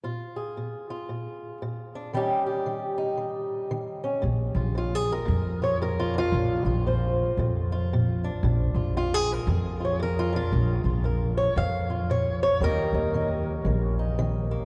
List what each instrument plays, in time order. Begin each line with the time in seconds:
0.04 steel-string acoustic guitar A#2 F4
0.36 steel-string acoustic guitar G#4
0.57 steel-string acoustic guitar A#2
0.90 steel-string acoustic guitar F4
1.09 steel-string acoustic guitar A#2
1.62 steel-string acoustic guitar A#2
1.95 steel-string acoustic guitar D4
2.13 steel-string acoustic guitar D#3 G3 C#4 D#4 G4
2.46 steel-string acoustic guitar G4
2.66 steel-string acoustic guitar D#3
2.98 steel-string acoustic guitar D#4
3.17 steel-string acoustic guitar D#3
3.71 steel-string acoustic guitar D#3
4.04 steel-string acoustic guitar C#4
4.22 upright bass A#1, steel-string acoustic guitar A#2
4.55 upright bass A#1, steel-string acoustic guitar F4
4.75 steel-string acoustic guitar A#2 F4
4.95 steel-string acoustic guitar G#4
5.12 steel-string acoustic guitar A#4
5.25 upright bass F2, steel-string acoustic guitar A#2
5.62 steel-string acoustic guitar F4 C#5
5.82 steel-string acoustic guitar A#2 A#4
6.00 steel-string acoustic guitar F4
6.14 steel-string acoustic guitar D4
6.18 steel-string acoustic guitar F4
6.32 upright bass A#1, steel-string acoustic guitar A#2
6.65 upright bass A#1, steel-string acoustic guitar F4
6.87 steel-string acoustic guitar A#2 C5
7.37 upright bass F2, steel-string acoustic guitar A#2
7.72 steel-string acoustic guitar F4
7.93 steel-string acoustic guitar A#2
8.24 steel-string acoustic guitar D4
8.43 upright bass A#1, steel-string acoustic guitar A#2
8.74 upright bass A#1, steel-string acoustic guitar F4
8.97 steel-string acoustic guitar A#2 F4
9.14 steel-string acoustic guitar G#4
9.33 steel-string acoustic guitar A#4
9.47 upright bass F2, steel-string acoustic guitar A#2
9.80 steel-string acoustic guitar F4
9.85 steel-string acoustic guitar C#5
10.00 steel-string acoustic guitar A#2 A#4
10.19 steel-string acoustic guitar F4
10.33 steel-string acoustic guitar D4 F4
10.52 upright bass A#1, steel-string acoustic guitar A#2
10.84 upright bass A#1, steel-string acoustic guitar F4
11.04 steel-string acoustic guitar A#2 A#4
11.37 steel-string acoustic guitar C#5
11.56 upright bass F2, steel-string acoustic guitar A#2 F5
11.90 steel-string acoustic guitar F4
12.10 steel-string acoustic guitar A#2 C#5
12.43 steel-string acoustic guitar C#5
12.60 upright bass D#2, steel-string acoustic guitar D#3 G3 A#3 D#4 A#4
12.93 upright bass D#2, steel-string acoustic guitar D#4
13.14 steel-string acoustic guitar D#3 D#4
13.65 upright bass A#1, steel-string acoustic guitar D#3
13.99 steel-string acoustic guitar D#4
14.19 steel-string acoustic guitar D#3
14.51 steel-string acoustic guitar A#3